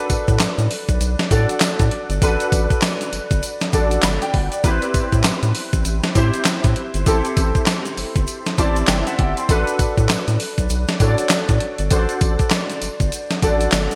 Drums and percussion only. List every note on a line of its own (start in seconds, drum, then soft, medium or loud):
0.10 kick medium
0.10 closed hi-hat medium
0.10 tambourine medium
0.10 shaker medium
0.28 kick medium
0.28 closed hi-hat soft
0.28 shaker soft
0.39 snare loud
0.39 clap medium
0.39 closed hi-hat loud
0.39 tambourine loud
0.39 shaker medium
0.59 closed hi-hat medium
0.59 shaker medium
0.71 open hi-hat medium
0.71 tambourine medium
0.89 kick medium
0.89 closed hi-hat medium
0.89 shaker medium
1.01 closed hi-hat medium
1.01 tambourine medium
1.01 shaker medium
1.19 snare medium
1.19 closed hi-hat medium
1.19 shaker soft
1.31 kick loud
1.31 closed hi-hat medium
1.31 tambourine medium
1.31 shaker soft
1.49 closed hi-hat medium
1.49 shaker medium
1.60 snare loud
1.60 clap medium
1.60 closed hi-hat medium
1.60 tambourine loud
1.60 shaker medium
1.79 kick loud
1.79 closed hi-hat medium
1.79 shaker medium
1.91 closed hi-hat medium
2.10 closed hi-hat medium
2.10 shaker medium
2.22 kick loud
2.22 closed hi-hat medium
2.22 tambourine medium
2.22 shaker medium
2.40 closed hi-hat medium
2.40 shaker medium
2.52 kick loud
2.52 closed hi-hat medium
2.52 tambourine medium
2.52 shaker medium
2.70 kick medium
2.70 closed hi-hat soft
2.70 shaker soft
2.82 snare loud
2.82 clap loud
2.82 closed hi-hat loud
2.82 tambourine loud
2.82 shaker medium
3.01 closed hi-hat medium
3.01 shaker medium
3.13 closed hi-hat medium
3.13 tambourine medium
3.31 kick loud
3.31 closed hi-hat soft
3.31 shaker medium
3.43 closed hi-hat medium
3.43 tambourine medium
3.43 shaker medium
3.61 snare medium
3.61 closed hi-hat medium
3.61 shaker soft
3.73 kick medium
3.73 closed hi-hat medium
3.73 tambourine medium
3.73 shaker medium
3.91 closed hi-hat medium
3.91 shaker medium
4.03 snare loud
4.03 clap loud
4.03 closed hi-hat medium
4.03 tambourine loud
4.03 shaker medium
4.22 closed hi-hat medium
4.22 shaker soft
4.34 kick loud
4.34 open hi-hat medium
4.52 closed hi-hat medium
4.52 shaker medium
4.64 kick loud
4.64 closed hi-hat medium
4.64 tambourine medium
4.64 shaker medium
4.82 closed hi-hat medium
4.82 shaker medium
4.94 kick medium
4.94 closed hi-hat medium
4.94 tambourine medium
4.94 shaker medium
5.12 kick medium
5.12 closed hi-hat soft
5.12 shaker soft
5.24 snare loud
5.24 clap medium
5.24 closed hi-hat medium
5.24 tambourine loud
5.24 shaker medium
5.43 closed hi-hat medium
5.43 shaker medium
5.55 open hi-hat medium
5.55 tambourine medium
5.73 kick medium
5.73 closed hi-hat medium
5.73 shaker medium
5.85 closed hi-hat medium
5.85 tambourine medium
5.85 shaker medium
6.03 snare medium
6.03 closed hi-hat medium
6.03 shaker soft
6.15 kick medium
6.15 closed hi-hat medium
6.15 tambourine medium
6.15 shaker medium
6.34 closed hi-hat medium
6.34 shaker medium
6.45 snare loud
6.45 clap medium
6.45 closed hi-hat medium
6.45 tambourine loud
6.45 shaker medium
6.64 kick loud
6.64 closed hi-hat medium
6.64 shaker medium
6.76 closed hi-hat medium
6.94 closed hi-hat medium
6.94 shaker medium
7.06 kick loud
7.06 closed hi-hat medium
7.06 tambourine medium
7.06 shaker medium
7.25 closed hi-hat medium
7.25 shaker medium
7.37 kick loud
7.37 closed hi-hat medium
7.37 tambourine medium
7.37 shaker medium
7.55 kick loud
7.55 closed hi-hat soft
7.55 shaker soft
7.66 snare loud
7.66 clap medium
7.66 closed hi-hat medium
7.66 tambourine loud
7.66 shaker medium
7.86 closed hi-hat medium
7.86 shaker medium
7.97 open hi-hat medium
7.97 tambourine medium
8.16 kick loud
8.16 closed hi-hat medium
8.16 shaker medium
8.28 closed hi-hat medium
8.28 tambourine medium
8.28 shaker medium
8.46 snare medium
8.46 closed hi-hat medium
8.46 shaker soft
8.58 kick loud
8.58 closed hi-hat medium
8.58 tambourine medium
8.58 shaker medium
8.76 closed hi-hat medium
8.76 shaker medium
8.87 snare loud
8.87 clap loud
8.87 closed hi-hat medium
8.87 tambourine loud
8.87 shaker medium
9.07 closed hi-hat medium
9.07 shaker medium
9.19 kick loud
9.19 closed hi-hat medium
9.37 closed hi-hat medium
9.37 shaker medium
9.49 kick loud
9.49 closed hi-hat medium
9.49 tambourine medium
9.49 shaker medium
9.67 closed hi-hat medium
9.67 shaker medium
9.79 kick loud
9.79 closed hi-hat medium
9.79 tambourine medium
9.79 shaker medium
9.98 kick medium
9.98 closed hi-hat soft
9.98 shaker soft
10.09 snare loud
10.09 clap medium
10.09 closed hi-hat medium
10.09 tambourine loud
10.09 shaker medium
10.28 closed hi-hat medium
10.28 shaker medium
10.40 open hi-hat medium
10.40 tambourine medium
10.58 kick medium
10.58 closed hi-hat medium
10.58 shaker medium
10.70 closed hi-hat medium
10.70 tambourine medium
10.70 shaker medium
10.88 snare medium
10.88 closed hi-hat medium
10.88 shaker soft
11.00 kick medium
11.00 closed hi-hat medium
11.00 tambourine medium
11.00 shaker medium
11.18 closed hi-hat medium
11.18 shaker medium
11.29 snare loud
11.29 clap loud
11.29 closed hi-hat medium
11.29 tambourine loud
11.29 shaker medium
11.49 kick loud
11.49 closed hi-hat medium
11.49 shaker medium
11.60 closed hi-hat medium
11.78 closed hi-hat medium
11.78 shaker soft
11.91 kick loud
11.91 closed hi-hat medium
11.91 tambourine medium
11.91 shaker medium
12.09 closed hi-hat medium
12.09 shaker medium
12.21 kick loud
12.21 closed hi-hat medium
12.21 tambourine medium
12.39 kick medium
12.39 closed hi-hat soft
12.39 shaker soft
12.51 snare loud
12.51 clap loud
12.51 closed hi-hat medium
12.51 tambourine loud
12.51 shaker medium
12.70 closed hi-hat medium
12.70 shaker soft
12.82 closed hi-hat medium
12.82 tambourine medium
12.82 shaker soft
13.00 kick medium
13.00 closed hi-hat medium
13.00 shaker medium
13.12 closed hi-hat medium
13.12 tambourine medium
13.12 shaker medium
13.31 snare medium
13.31 closed hi-hat medium
13.31 shaker soft
13.42 kick medium
13.42 closed hi-hat medium
13.42 tambourine medium
13.42 shaker soft
13.61 closed hi-hat medium
13.61 shaker medium
13.72 snare loud
13.72 clap loud
13.72 closed hi-hat medium
13.72 tambourine loud
13.72 shaker medium
13.91 closed hi-hat medium
13.91 shaker medium